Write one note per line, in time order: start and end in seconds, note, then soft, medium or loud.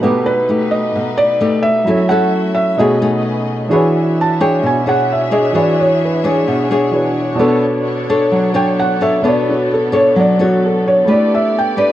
0.00 1.82 B2 soft
0.00 0.93 B2 medium
0.00 2.75 A3 medium
0.00 0.32 A3 medium
0.00 1.82 D#4 medium
0.00 1.85 D#4 medium
0.00 0.32 D#4 medium
0.00 1.83 G4 soft
0.00 0.33 G4 medium
0.00 1.84 B4 medium
0.00 0.24 B4 medium
0.05 1.84 A4 soft
0.05 1.85 D6 medium
0.26 0.73 B4 loud
0.49 1.11 A3 medium
0.49 1.11 D#4 medium
0.49 1.11 G4 medium
0.71 1.19 D#5 medium
0.95 1.85 B2 medium
1.17 1.65 D5 loud
1.40 1.85 A3 medium
1.40 1.85 D#4 medium
1.40 1.85 G4 medium
1.63 2.11 E5 loud
1.84 2.76 F#3 medium
1.84 2.77 F#3 medium
1.84 2.00 C#4 medium
1.84 2.76 E4 soft
1.84 2.01 E4 medium
1.84 2.77 F#4 medium
1.84 2.01 A4 medium
1.84 2.78 E5 medium
1.89 2.78 A4 soft
1.89 2.79 C#5 medium
2.09 2.77 C#4 medium
2.09 2.78 E4 medium
2.09 2.78 A4 medium
2.09 2.57 F#5 loud
2.55 2.79 E5 medium
2.77 3.68 B2 soft
2.77 3.69 B2 medium
2.77 3.70 A3 medium
2.77 2.98 A3 medium
2.77 3.70 C#4 medium
2.77 3.69 D#4 soft
2.77 2.99 D#4 medium
2.77 3.69 F#4 soft
2.77 3.69 G#4 medium
2.77 2.99 G#4 medium
2.77 3.70 G#4 soft
2.77 3.69 B4 medium
2.77 3.70 D#5 medium
2.77 3.44 D#5 medium
2.83 3.71 C#5 medium
3.02 3.67 A3 medium
3.02 3.67 D#4 medium
3.02 3.67 G#4 medium
3.69 5.50 E3 medium
3.69 4.61 E3 medium
3.69 5.51 D4 medium
3.69 11.03 D4 medium
3.69 4.17 D4 soft
3.69 7.35 F#4 medium
3.69 5.51 F#4 medium
3.69 7.35 G#4 medium
3.69 4.17 G#4 medium
3.69 5.52 G#4 medium
3.69 11.03 C#5 medium
3.69 4.17 C#5 medium
3.69 7.35 E5 medium
3.73 5.53 B4 medium
3.73 5.53 C#5 medium
4.21 4.42 A5 medium
4.41 4.83 D4 medium
4.41 4.83 G#4 medium
4.41 4.83 C#5 medium
4.41 4.63 G5 medium
4.63 5.53 B2 medium
4.63 4.87 G#5 medium
4.86 5.29 D4 medium
4.86 5.29 G#4 medium
4.86 5.29 C#5 medium
4.86 5.10 F#5 medium
5.13 5.33 E5 medium
5.31 5.51 D4 medium
5.31 5.51 G#4 medium
5.31 5.52 C#5 medium
5.31 5.55 D#5 medium
5.52 6.89 E3 soft
5.52 6.45 E3 medium
5.52 6.89 D4 soft
5.52 6.20 D4 medium
5.52 6.90 F#4 soft
5.52 6.20 G#4 medium
5.52 6.91 G#4 soft
5.52 6.21 C#5 medium
5.56 6.91 B4 soft
5.56 6.92 C#5 medium
5.56 5.79 D5 medium
5.80 6.02 C#5 medium
6.05 6.26 B4 medium
6.24 6.66 D4 medium
6.24 6.67 G#4 medium
6.24 6.90 G#4 medium
6.24 6.67 C#5 medium
6.48 7.37 B2 medium
6.70 7.36 D4 medium
6.70 7.36 G#4 medium
6.70 7.36 C#5 medium
6.91 7.38 E3 soft
6.91 7.35 D4 soft
6.91 7.36 F#4 soft
6.91 7.39 G#4 soft
6.91 7.39 B4 soft
6.91 7.39 C#5 soft
7.35 9.17 B2 medium
7.35 11.92 B3 medium
7.35 9.18 D4 medium
7.35 9.18 F#4 medium
7.35 11.92 A4 medium
7.39 8.29 B3 medium
7.39 8.04 D4 medium
7.39 9.20 A4 medium
7.39 8.05 A4 medium
7.39 8.05 C#5 medium
7.39 9.20 C#5 medium
8.09 8.51 D4 medium
8.09 8.51 A4 medium
8.09 8.51 C#5 medium
8.31 9.21 F#3 medium
8.54 8.97 D4 medium
8.54 8.96 A4 medium
8.54 8.97 C#5 medium
8.54 8.77 G5 medium
8.80 9.01 F#5 medium
9.01 9.20 D4 medium
9.01 9.20 A4 medium
9.01 9.20 C#5 medium
9.01 9.24 E5 medium
9.22 11.03 B2 medium
9.22 10.13 B3 medium
9.22 11.03 D4 soft
9.22 9.89 D4 medium
9.22 11.04 F#4 soft
9.22 9.89 A4 medium
9.22 11.05 A4 soft
9.22 9.25 C#5 medium
9.22 9.89 C#5 medium
9.27 11.05 C#5 medium
9.27 9.47 D5 medium
9.49 9.70 F#4 medium
9.74 9.94 A4 medium
9.92 10.35 D4 medium
9.92 10.35 A4 medium
9.92 10.35 C#5 medium
9.92 10.16 C#5 medium
10.16 11.05 F#3 medium
10.16 10.40 D5 medium
10.39 11.04 D4 medium
10.39 10.62 F#4 medium
10.39 11.04 A4 medium
10.39 11.05 C#5 medium
10.66 10.86 A4 medium
10.88 11.08 C#5 medium
11.04 11.92 A3 medium
11.04 11.73 D4 soft
11.04 11.92 E4 soft
11.04 11.92 G4 soft
11.04 11.92 G4 medium
11.04 11.73 G4 medium
11.04 11.92 D5 medium
11.08 11.73 B4 medium
11.08 11.92 B4 soft
11.08 11.92 D5 medium
11.08 11.32 D5 medium
11.34 11.55 E5 medium
11.58 11.78 G5 medium
11.77 11.92 D4 medium
11.77 11.92 G4 medium
11.77 11.92 B4 medium
11.77 11.92 D5 medium